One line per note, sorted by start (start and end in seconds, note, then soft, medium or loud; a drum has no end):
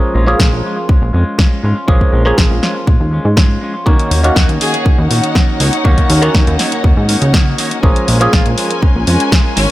0.00 0.24 F3 medium
0.00 0.13 G#3 medium
0.00 0.25 A#3 medium
0.00 0.14 C#4 medium
0.00 0.25 C#4 medium
0.00 0.16 F4 medium
0.00 0.25 G#4 loud
0.14 0.35 A#1 loud
0.14 0.38 G#3 medium
0.14 0.39 C#4 medium
0.14 0.40 F4 medium
0.27 1.85 F3 medium
0.27 1.85 A#3 medium
0.27 1.85 C#4 medium
0.27 1.86 G#4 loud
0.39 0.50 A#1 loud
0.39 0.62 G#3 medium
0.39 0.64 C#4 medium
0.39 0.65 F4 loud
0.39 kick loud
0.39 snare loud
0.53 0.62 A#1 loud
0.64 0.77 G#3 medium
0.64 0.78 C#4 medium
0.64 0.75 F4 medium
0.76 0.89 C#4 soft
0.76 0.89 F4 medium
0.89 0.99 A#1 soft
0.89 1.12 G#3 medium
0.89 1.13 C#4 medium
0.89 1.15 F4 medium
0.89 kick loud
1.02 1.11 A#1 medium
1.13 1.24 F2 medium
1.13 1.37 G#3 medium
1.13 1.38 C#4 medium
1.13 1.39 F4 medium
1.38 1.61 G#3 medium
1.38 1.63 C#4 medium
1.38 1.64 F4 medium
1.38 kick loud
1.38 snare loud
1.63 1.74 G#1 loud
1.63 1.76 G#3 medium
1.63 1.77 C#4 medium
1.63 1.74 F4 medium
1.75 1.87 C#4 soft
1.75 1.88 F4 medium
1.88 1.98 A#1 loud
1.88 2.23 F3 medium
1.88 2.11 G#3 medium
1.88 2.23 A#3 medium
1.88 2.23 C#4 medium
1.88 2.12 C#4 loud
1.88 2.14 F4 medium
1.88 2.23 G#4 loud
1.88 kick loud
2.01 kick medium
2.12 2.33 A#1 medium
2.12 2.36 G#3 medium
2.12 2.37 C#4 medium
2.12 2.38 F4 medium
2.25 3.83 F3 medium
2.25 3.84 A#3 medium
2.25 3.84 C#4 medium
2.25 3.84 G#4 loud
2.37 2.48 A#1 loud
2.37 2.61 G#3 medium
2.37 2.62 C#4 medium
2.37 2.63 F4 medium
2.37 kick loud
2.37 snare loud
2.51 2.60 A#1 loud
2.62 2.75 G#3 medium
2.62 2.76 C#4 medium
2.62 2.73 F4 medium
2.62 snare medium
2.75 2.87 C#4 soft
2.75 2.87 F4 medium
2.87 2.98 A#1 medium
2.87 3.10 G#3 medium
2.87 3.12 C#4 medium
2.87 3.13 F4 medium
2.87 kick loud
3.00 3.20 D#2 medium
3.11 3.35 G#3 medium
3.11 3.36 C#4 medium
3.11 3.37 F4 medium
3.25 3.58 G#2 medium
3.36 3.60 G#3 medium
3.36 3.61 C#4 medium
3.36 3.63 F4 loud
3.36 kick loud
3.36 snare loud
3.61 3.74 G#3 medium
3.61 3.75 C#4 medium
3.61 3.73 F4 medium
3.74 3.86 C#4 soft
3.74 3.86 F4 medium
3.86 3.97 D#2 loud
3.86 4.21 D#3 medium
3.86 4.09 D#3 medium
3.86 4.21 A#3 medium
3.86 4.10 A#3 medium
3.86 4.21 C#4 medium
3.86 4.11 C#4 medium
3.86 7.79 D#4 medium
3.86 4.21 F#4 loud
3.86 4.12 F#4 loud
3.86 7.79 C#5 medium
3.86 7.79 F#5 medium
3.86 kick loud
3.99 closed hi-hat soft
4.10 4.31 D#2 medium
4.10 4.34 D#3 medium
4.10 4.35 A#3 medium
4.10 4.36 C#4 medium
4.10 4.36 F#4 medium
4.10 open hi-hat loud
4.23 5.82 D#3 medium
4.23 5.82 A#3 medium
4.23 5.82 C#4 medium
4.23 5.83 F#4 loud
4.23 closed hi-hat medium
4.36 4.46 D#2 loud
4.36 4.59 D#3 medium
4.36 4.60 A#3 medium
4.36 4.61 C#4 medium
4.36 4.48 F#4 medium
4.36 4.62 F#4 medium
4.36 kick loud
4.36 snare loud
4.49 4.58 D#2 loud
4.49 closed hi-hat soft
4.60 4.74 D#3 medium
4.60 4.74 A#3 medium
4.60 4.73 C#4 medium
4.60 4.72 F#4 medium
4.60 4.99 G#4 medium
4.60 open hi-hat loud
4.73 4.85 A#3 medium
4.73 4.86 C#4 medium
4.73 4.85 F#4 medium
4.73 closed hi-hat medium
4.85 4.96 D#2 soft
4.85 5.09 D#3 medium
4.85 5.10 A#3 medium
4.85 5.11 C#4 medium
4.85 5.11 F#4 medium
4.85 kick loud
4.98 5.08 D#2 loud
5.10 5.21 A#1 medium
5.10 5.34 D#3 medium
5.10 5.34 A#3 medium
5.10 5.35 C#4 medium
5.10 5.35 F#4 medium
5.10 open hi-hat loud
5.24 closed hi-hat medium
5.35 5.58 D#3 medium
5.35 5.59 A#3 medium
5.35 5.60 C#4 medium
5.35 5.61 F#4 medium
5.35 kick loud
5.35 snare loud
5.59 5.70 C#2 loud
5.59 5.73 D#3 medium
5.59 5.73 A#3 medium
5.59 5.73 C#4 medium
5.59 5.71 F#4 medium
5.59 open hi-hat loud
5.72 5.84 A#3 soft
5.72 5.85 C#4 medium
5.72 5.85 F#4 medium
5.72 closed hi-hat medium
5.84 5.95 D#2 loud
5.84 6.08 D#3 medium
5.84 6.19 D#3 medium
5.84 6.20 A#3 medium
5.84 6.09 A#3 medium
5.84 6.20 C#4 medium
5.84 6.10 C#4 medium
5.84 6.20 F#4 loud
5.84 6.11 F#4 medium
5.84 kick loud
5.98 kick medium
5.98 closed hi-hat medium
6.09 6.30 D#2 medium
6.09 6.33 D#3 medium
6.09 6.34 A#3 medium
6.09 6.34 C#4 medium
6.09 6.35 F#4 medium
6.09 open hi-hat loud
6.22 7.80 D#3 medium
6.22 7.80 A#3 medium
6.22 7.81 C#4 medium
6.22 7.81 F#4 loud
6.22 closed hi-hat medium
6.34 6.45 D#2 medium
6.34 6.58 D#3 medium
6.34 6.59 A#3 medium
6.34 6.60 C#4 medium
6.34 6.60 F#4 medium
6.34 kick loud
6.34 snare loud
6.47 6.57 D#2 loud
6.47 closed hi-hat soft
6.59 6.72 D#3 medium
6.59 6.73 A#3 medium
6.59 6.72 C#4 medium
6.59 6.70 F#4 medium
6.59 snare medium
6.59 open hi-hat loud
6.72 6.83 A#3 medium
6.72 6.84 C#4 medium
6.72 6.84 F#4 medium
6.72 closed hi-hat medium
6.83 6.94 D#2 medium
6.83 7.07 D#3 medium
6.83 7.08 A#3 medium
6.83 7.09 C#4 medium
6.83 7.10 F#4 medium
6.83 kick loud
6.97 7.16 G#2 medium
7.08 7.32 D#3 medium
7.08 7.33 A#3 medium
7.08 7.33 C#4 medium
7.08 7.34 F#4 medium
7.08 open hi-hat loud
7.22 7.54 C#2 medium
7.22 closed hi-hat medium
7.33 7.57 D#3 medium
7.33 7.58 A#3 medium
7.33 7.58 C#4 medium
7.33 7.59 F#4 medium
7.33 kick loud
7.33 snare loud
7.58 7.71 D#3 medium
7.58 7.72 A#3 medium
7.58 7.71 C#4 medium
7.58 7.70 F#4 medium
7.58 open hi-hat loud
7.71 7.82 A#3 medium
7.71 7.83 C#4 medium
7.71 7.83 F#4 medium
7.71 closed hi-hat medium
7.83 7.93 A#1 loud
7.83 8.18 F3 loud
7.83 8.06 G#3 medium
7.83 8.18 A#3 medium
7.83 8.18 C#4 medium
7.83 9.71 C#4 medium
7.83 8.08 C#4 medium
7.83 8.09 F4 loud
7.83 8.18 G#4 loud
7.83 9.71 A#4 medium
7.83 9.71 G#5 medium
7.83 kick loud
7.96 closed hi-hat medium
8.07 8.28 A#1 medium
8.07 8.31 G#3 medium
8.07 8.32 C#4 medium
8.07 8.33 F4 medium
8.07 open hi-hat medium
8.20 9.71 F3 loud
8.20 9.71 A#3 medium
8.20 9.71 C#4 medium
8.20 9.71 G#4 loud
8.20 closed hi-hat medium
8.32 8.43 A#1 loud
8.32 8.56 G#3 medium
8.32 8.57 C#4 loud
8.32 8.45 F4 medium
8.32 8.58 F4 medium
8.32 kick loud
8.32 snare loud
8.46 8.55 A#1 loud
8.46 closed hi-hat medium
8.57 8.70 G#3 medium
8.57 8.71 C#4 medium
8.57 8.69 F4 medium
8.57 open hi-hat loud
8.70 8.82 C#4 medium
8.70 8.82 F4 medium
8.70 closed hi-hat medium
8.82 8.93 A#1 soft
8.82 9.06 G#3 medium
8.82 9.07 C#4 medium
8.82 9.08 F4 medium
8.82 kick loud
8.96 9.05 A#1 loud
9.07 9.18 F2 medium
9.07 9.30 G#3 medium
9.07 9.31 C#4 medium
9.07 9.32 F4 medium
9.07 open hi-hat loud
9.20 closed hi-hat medium
9.32 9.55 G#3 medium
9.32 9.56 C#4 medium
9.32 9.58 F4 loud
9.32 kick loud
9.32 snare loud
9.56 9.67 G#1 loud
9.56 9.69 G#3 medium
9.56 9.69 C#4 medium
9.56 9.70 C#4 medium
9.56 9.68 F4 medium
9.56 open hi-hat medium